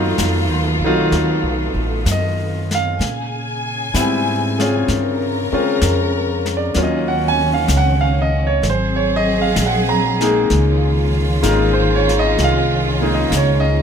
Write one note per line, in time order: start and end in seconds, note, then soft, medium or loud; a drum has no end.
0.00 0.15 F#2 medium
0.00 2.96 D#3 medium
0.00 0.16 F#3 medium
0.00 0.15 A3 medium
0.00 2.96 A3 medium
0.00 2.97 B3 medium
0.00 0.16 D#4 medium
0.00 0.16 F4 medium
0.00 2.95 F4 medium
0.00 0.17 D#5 medium
0.18 0.49 F2 medium
0.18 snare medium
0.18 hi-hat pedal medium
0.49 0.79 D#2 soft
0.79 1.09 B1 medium
0.84 1.10 F#3 medium
0.84 1.10 A3 medium
0.84 1.10 D#4 medium
0.84 1.11 F4 medium
1.11 1.44 D#2 medium
1.11 brush sweep soft
1.11 snare soft
1.42 1.73 B1 soft
1.74 2.03 A1 medium
2.05 2.97 F#2 medium
2.05 snare medium
2.05 hi-hat pedal medium
2.12 2.72 D#5 medium
2.71 3.92 F5 medium
2.71 snare soft
2.99 3.91 A#2 medium
2.99 6.72 C#3 medium
2.99 4.86 G#5 medium
2.99 brush sweep soft
2.99 snare soft
3.94 4.85 G#2 medium
3.94 4.52 G3 medium
3.94 4.53 B3 medium
3.94 4.53 C4 medium
3.94 4.53 E4 medium
3.94 snare medium
3.94 hi-hat pedal medium
4.58 5.40 C4 medium
4.58 5.40 C#4 medium
4.58 5.41 F4 medium
4.58 5.40 G#4 medium
4.58 snare soft
4.88 5.49 G2 medium
4.88 6.74 A#4 medium
4.88 brush sweep soft
4.88 snare soft
5.52 5.79 G#3 medium
5.52 5.79 C4 medium
5.52 5.79 C#4 medium
5.52 5.79 F4 medium
5.52 muted upright bass stroke soft
5.81 6.72 F2 medium
5.81 snare medium
5.81 hi-hat pedal medium
6.46 snare soft
6.57 6.73 D5 medium
6.74 7.66 D#2 medium
6.74 8.61 D#3 medium
6.74 8.21 F#3 medium
6.74 8.21 A#3 medium
6.74 8.61 C#4 medium
6.74 8.21 C#4 medium
6.74 8.22 F4 medium
6.74 brush sweep medium
6.74 snare soft
6.83 7.11 D#5 medium
7.08 7.39 F#5 medium
7.28 7.48 G#5 loud
7.54 7.68 F5 medium
7.68 8.59 C#2 medium
7.68 snare medium
7.68 hi-hat pedal medium
7.77 8.05 F#5 loud
8.01 8.32 F5 medium
8.22 8.42 D#5 medium
8.47 8.62 C#5 medium
8.62 9.53 G#1 medium
8.62 10.50 F#3 medium
8.62 10.50 C4 medium
8.62 10.50 G#4 medium
8.62 brush sweep medium
8.62 snare soft
8.70 8.98 C5 medium
8.96 9.27 C#5 medium
9.16 9.36 D#5 medium
9.42 9.56 F5 medium
9.56 10.47 A#1 medium
9.56 snare medium
9.56 hi-hat pedal medium
9.66 9.93 F#5 medium
9.89 10.08 A#5 medium
10.21 11.38 G#3 medium
10.21 11.39 A#3 medium
10.21 11.39 D#4 medium
10.21 11.39 G#4 medium
10.21 snare soft
10.50 11.41 C#2 medium
10.50 13.82 D#3 medium
10.50 13.82 C#4 medium
10.50 13.82 F4 medium
10.50 brush sweep soft
10.50 snare soft
11.43 12.35 G#1 medium
11.43 12.02 G#3 medium
11.43 12.02 A#3 medium
11.43 12.02 D#4 medium
11.43 12.02 F4 medium
11.43 snare medium
11.43 hi-hat pedal medium
11.48 11.78 A#4 medium
11.73 12.06 C5 medium
11.95 12.16 C#5 medium
12.09 snare soft
12.19 12.35 D#5 medium
12.38 13.29 C2 medium
12.38 brush sweep medium
12.38 snare soft
12.44 13.16 F5 medium
13.01 13.28 G#3 medium
13.01 13.28 A#3 medium
13.01 13.29 D#4 medium
13.01 13.29 G#4 medium
13.14 13.30 D#5 medium
13.31 13.82 C#2 medium
13.31 snare medium
13.31 hi-hat pedal medium
13.37 13.66 C#5 medium
13.60 13.82 D#5 medium